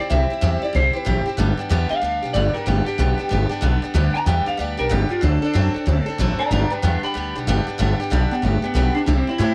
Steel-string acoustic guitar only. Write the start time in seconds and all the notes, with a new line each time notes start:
0.00 C4 E4 G4
0.10 C3 G3 C4 E4 G4
0.30 C4 E4 G4
0.41 C3 G3 C4 E4 G4
0.62 C4 E4 G4
0.73 G3 C4 E4 G4
0.93 C4 E4 G4
1.05 C3 G3 C4 E4 G4
1.26 C4 E4 G4
1.37 G2 D3 G3 B3 D4 G4
1.57 G3 B3 D4 G4
1.69 G2 D3 G3 B3 D4 G4
1.89 G3 B3 D4 G4
2.01 G3 B3 D4 G4
2.23 G3 B3 D4 G4
2.34 G2 D3 G3 B3 D4 G4
2.54 G3 B3 D4 G4
2.66 G2 D3 G3 B3 D4 G4
2.86 G3 B3 D4 G4
2.98 G2 D3 G3 B3 D4 G4
3.18 G3 B3 D4 G4
3.29 G3 B3 D4 G4
3.49 G3 B3 D4 G4
3.61 G2 D3 G3 B3 D4 G4
3.82 G3 B3 D4 G4
3.94 G2 D3 G3 B3 D4 G4
4.15 G3 B3 D4 G4
4.26 G2 D3 G3 B3 D4 G4
4.46 G3 B3 D4 G4
4.57 G3 B3 D4 G4
4.77 G3 B3 D4 G4
4.89 G2 D3 G3 B3 D4 G4
5.09 G3 B3 D4 G4
5.21 D3 F#3 C4 D4 A4
5.42 C4 D4 A4
5.53 D3 F#3 C4 D4 A4
5.74 C4 D4 A4
5.86 F#3 C4 D4 A4
6.06 C4 D4 A4
6.18 D3 F#3 C4 D4 A4
6.39 C4 D4 A4
6.51 G2 D3 G3 B3 D4 G4
6.70 G3 B3 D4 G4
6.82 G2 D3 G3 B3 D4 G4
7.03 G3 B3 D4 G4
7.14 G3 B3 D4 G4
7.35 G3 B3 D4 G4
7.47 G2 D3 G3 B3 D4 G4
7.67 G3 B3 D4 G4
7.78 G2 D3 G3 B3 D4 G4
8.00 G3 B3 D4 G4
8.10 G2 D3 G3 B3 D4 G4
8.31 G3 B3 D4 G4
8.42 G3 B3 D4 G4
8.62 G3 B3 D4 G4
8.74 G2 D3 G3 B3 D4 G4
8.95 G3 B3 D4 G4
9.06 C3 G3 C4 E4 G4
9.27 C4 E4 G4
9.38 C3 G3 C4 E4 G4